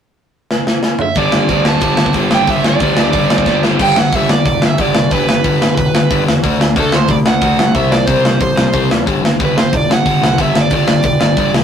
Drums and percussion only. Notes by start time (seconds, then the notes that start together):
0.51 snare
0.67 snare
0.83 snare
0.99 mid tom
1.15 kick, open hi-hat
1.32 snare
1.49 kick, open hi-hat
1.65 snare
1.81 kick, open hi-hat
1.97 snare
2.06 kick
2.13 kick, open hi-hat
2.31 snare
2.47 kick, open hi-hat
2.64 snare
2.80 kick, open hi-hat
2.97 snare
3.13 kick, open hi-hat
3.30 snare
3.38 kick
3.46 kick, snare
3.63 snare
3.79 kick, crash
3.96 snare
4.13 kick, open hi-hat
4.29 snare
4.46 kick, open hi-hat
4.62 snare
4.78 kick, open hi-hat
4.95 snare
5.11 kick, open hi-hat
5.29 snare
5.44 kick, open hi-hat
5.62 snare
5.77 kick, open hi-hat
5.95 snare
6.11 kick, open hi-hat
6.28 snare
6.44 kick, open hi-hat
6.61 snare
6.76 kick, open hi-hat
6.92 snare
7.08 kick, open hi-hat
7.26 snare
7.41 kick, open hi-hat
7.59 snare
7.75 kick, open hi-hat
7.92 snare
8.07 kick, open hi-hat
8.25 snare
8.40 kick, open hi-hat
8.57 snare
8.73 kick, open hi-hat
8.91 snare
9.07 kick, open hi-hat
9.25 snare
9.40 kick, open hi-hat
9.58 snare
9.73 kick, open hi-hat
9.91 snare
10.06 kick, open hi-hat
10.24 snare
10.38 kick, open hi-hat
10.55 snare
10.70 kick, open hi-hat
10.88 snare
11.03 kick, open hi-hat
11.21 snare
11.37 kick, open hi-hat
11.54 snare